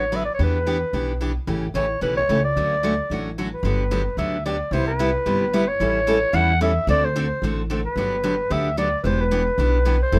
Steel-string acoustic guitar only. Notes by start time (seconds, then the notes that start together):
0.12 D3 F#3 B3 F#4 B4
0.39 E3 B3 D4 G4
0.66 E3 B3 D4 G4
0.93 E3 B3 D4 G4
1.21 E3 B3 D4 G4
1.47 C#3 E3 A3 C#4 G4
1.75 C#3 E3 A3 C#4 G4
2.01 C#3 E3 A3 C#4 G4
2.29 C#3 E3 A3 C#4 G4
2.57 D3 F#3 A3 C#4 F#4
2.83 D3 F#3 A3 C#4 F#4
3.11 D3 F#3 A3 C#4 F#4
3.38 D3 F#3 A3 C#4 F#4
3.65 D3 F#3 B3 D4 G4
3.91 D3 F#3 B3 D4 G4
4.18 D3 F#3 B3 D4 G4
4.46 D3 F#3 B3 D4 G4
4.73 C3 G3 B3 E4 G4
4.99 C3 G3 B3 E4 G4
5.26 C3 G3 B3 E4 G4
5.53 C3 G3 B3 E4 G4
5.80 E3 G3 C#4 E4 A4
6.07 E3 G3 C#4 E4 A4
6.33 E3 G3 C#4 E4 A4
6.61 E3 G3 C#4 E4 A4
6.88 D3 A3 C4 F#4 A4
7.16 D3 A3 C4 F#4 A4
7.43 D3 A3 C4 F#4 A4
7.70 D3 A3 C4 F#4 A4
7.97 D3 F#3 B3 D4 G4
8.24 D3 F#3 B3 D4 G4
8.50 D3 F#3 B3 D4 G4
8.77 D3 F#3 B3 D4 G4
9.05 E3 B3 D4 G4
9.31 E3 B3 D4 G4
9.59 E3 B3 D4 G4
9.85 E3 B3 D4 G4
10.12 E3 G3 C4 E4 A4